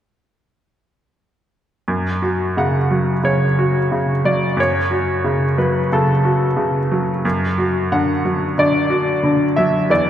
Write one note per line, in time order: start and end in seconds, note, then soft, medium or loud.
1.88 3.20 F#2 soft
2.22 2.77 F#4 soft
2.57 3.11 C#3 soft
2.57 3.21 F#5 soft
2.91 3.45 F#3 soft
3.24 3.78 C#3 soft
3.24 4.21 C#5 soft
3.59 4.12 F#4 soft
3.92 4.45 C#3 soft
4.25 4.78 F#3 soft
4.25 4.56 D5 soft
4.57 5.87 F#2 soft
4.57 5.55 C#5 soft
4.91 5.45 F#4 soft
5.24 5.78 C#3 soft
5.58 6.11 F#3 soft
5.58 5.89 B4 soft
5.92 6.45 C#3 soft
5.92 7.21 A4 soft
6.25 6.78 F#4 soft
6.57 7.10 C#3 soft
6.91 7.24 F#3 soft
7.25 8.54 F#2 soft
7.58 8.11 F#4 soft
7.92 8.45 D3 soft
7.92 8.54 F#5 soft
8.25 8.78 F#3 soft
8.58 9.11 D3 soft
8.58 9.54 D5 soft
8.90 9.43 F#4 soft
9.23 9.76 D3 soft
9.56 9.90 F#3 soft
9.56 9.87 E5 soft
9.90 10.10 E2 soft
9.90 10.10 D5 soft